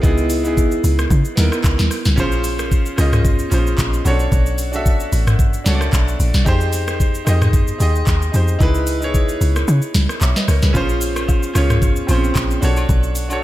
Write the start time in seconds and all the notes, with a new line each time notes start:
Already playing: F4
0.02 C#2 B3 D#4 E4 G#4, kick, shaker
0.18 shaker
0.30 open hi-hat, shaker
0.43 B3 D#4 E4 G#4, shaker
0.57 kick, shaker
0.72 shaker
0.84 C#2, open hi-hat, shaker
0.99 cross-stick, shaker
1.10 C#3, kick, shaker
1.25 shaker
1.36 D#2 B3 D#4 E4 A#4, snare, open hi-hat, shaker
1.52 cross-stick, shaker
1.64 C#2, kick, clap, shaker
1.79 D#2, snare, shaker
1.91 cross-stick, open hi-hat, shaker
2.05 C#2, snare, shaker
2.16 A#1 C#4 F4 G#4 C5, kick, shaker
2.32 shaker
2.44 open hi-hat, shaker
2.59 cross-stick, shaker
2.72 kick, shaker
2.86 shaker
2.96 C#2 C#4 F4 G#4 D#5, cross-stick, open hi-hat, shaker
3.13 cross-stick, mid tom, shaker
3.25 kick, shaker
3.39 shaker
3.50 A#1 C#4 F4 G#4 C5, open hi-hat, shaker
3.67 shaker
3.78 A#1, kick, clap, shaker
3.94 shaker
4.04 B1 C#4 F#4 A4 C#5, open hi-hat, shaker
4.10 D4
4.20 shaker
4.32 B1, kick, shaker
4.46 shaker
4.58 open hi-hat, shaker
4.72 D4 F#4 A4 E5, shaker
4.86 kick, shaker
5.00 shaker
5.12 A1, open hi-hat, shaker
5.27 cross-stick, mid tom, shaker
5.39 kick, shaker
5.53 shaker
5.64 C#2 D4 F#4 A4 C#5, snare, open hi-hat, shaker
5.74 D5
5.81 cross-stick, shaker
5.93 B1, kick, clap, shaker
6.08 shaker
6.20 A#1, open hi-hat, shaker
6.34 B1, snare, shaker
6.45 F2 D#4 G4 G#4 C5, kick, shaker
6.61 shaker
6.73 open hi-hat, shaker
6.88 cross-stick, shaker
7.00 kick, shaker
7.15 shaker
7.25 F2 D#4 G4 G#4 D#5, cross-stick, open hi-hat, shaker
7.42 cross-stick, mid tom, shaker
7.53 kick, shaker
7.68 shaker
7.78 D#2 D#4 G4 G#4 D#5, open hi-hat, shaker
7.96 shaker
8.07 D#2, kick, clap, shaker
8.22 shaker
8.32 F2 D#4 G4 G#4 C5, open hi-hat, shaker
8.48 shaker
8.59 C#2 D#4 E4 G#4 B4, kick, shaker
8.75 shaker
8.87 open hi-hat, shaker
9.00 D#4 E4 G#4 C#5, shaker
9.14 kick, shaker
9.29 shaker
9.41 C#2, open hi-hat, shaker
9.56 cross-stick, shaker
9.68 C#3, shaker
9.82 shaker
9.94 C#2, snare, open hi-hat, shaker
10.09 cross-stick, shaker
10.21 B1 C#5 E5, clap, shaker
10.36 B4 D#5, snare, shaker
10.48 C#2 A#4 C#5, cross-stick, open hi-hat, shaker
10.62 C#2 G#4 B4, snare, shaker
10.73 A#1 C#4 F4 G#4 C5, kick, shaker
10.89 shaker
11.01 open hi-hat, shaker
11.16 cross-stick, high agogo, shaker
11.28 kick, low woodblock, shaker
11.43 shaker
11.54 C#2 C#4 F4 G#4 C#5, cross-stick, open hi-hat, high agogo, shaker
11.70 cross-stick, mid tom, shaker
11.82 kick, shaker
11.96 shaker
12.07 A#1 C4 F4 G#4 C5, open hi-hat, high agogo, shaker
12.13 C#4
12.24 shaker
12.35 A#1, kick, clap, high agogo, shaker
12.51 shaker
12.61 B1 D4 F#4 A4 C#5, open hi-hat, shaker
12.77 high agogo, shaker
12.89 B1, kick, shaker
13.03 shaker
13.15 open hi-hat, shaker
13.29 D4 F#4 A4 C#5, high agogo, shaker